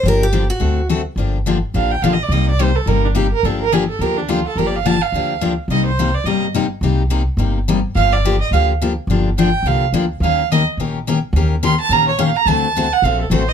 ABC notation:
X:1
M:4/4
L:1/8
Q:"Swing" 1/4=213
K:Gm
V:1 name="Violin"
z8 | z4 f g (3f e d | e d c A B D G B | A B _A =A B D F A |
(3B d f a f3 z2 | e c2 d e z3 | z8 | f d2 e f z3 |
z2 g2 f z3 | f2 e z4 z | z2 c' a b _d f b | a3 ^f =f A c e |]
V:2 name="Steel-string acoustic guitar"
B G2 ^F3 z2 | z8 | z8 | z8 |
z8 | z8 | z8 | z8 |
z8 | z8 | z8 | z8 |]
V:3 name="Steel-string acoustic guitar"
[D,F,B,DG] z [D,F,B,DG] z [D,A,C^FA] z [D,A,CFA] z | [D,F,B,DG] z [D,F,B,DG] z [D,F,B,DG] z [D,F,B,DG] z | [C,G,B,EG] z [C,G,B,EG] z [C,G,B,EG] z [C,G,B,EG] z | [D,F,B,DG] z [D,F,B,DG] z [D,F,B,DG] z [D,F,B,DG] z |
[D,F,B,DG] z [D,F,B,DG] z [D,F,B,DG] z [D,F,B,DG] z | [C,G,B,EG] z [C,G,B,EG] z [C,G,B,EG] z [C,G,B,EG] z | [C,G,B,EG] z [C,G,B,EG] z [C,G,B,EG] z [C,G,B,EG] z | [D,F,B,DG] z [D,F,B,DG] z [D,F,B,DG] z [D,F,B,DG] z |
[D,F,B,DG] z [D,F,B,DG] z [D,F,B,DG] z [D,F,B,DG] z | [E,B,_DGB] z [E,B,DGB] z [E,B,DGB] z [E,B,DGB] z | [E,B,_DGB] z [E,B,DGB] z [E,B,DGB] z [E,B,DGB] z | [D,A,C^FA] z [D,A,CFA] z [D,A,CFA] z [D,A,CFA] z |]
V:4 name="Upright bass" clef=bass
G,,,4 D,,4 | G,,,4 A,,,2 B,,,2 | C,,4 G,,,4 | G,,,4 D,,4 |
G,,,4 D,,4 | C,,4 G,,,4 | C,,4 G,,,4 | G,,,4 D,,4 |
G,,,4 C,,2 D,,2 | E,,4 B,,,4 | E,,4 B,,,4 | D,,4 B,,,2 A,,,2 |]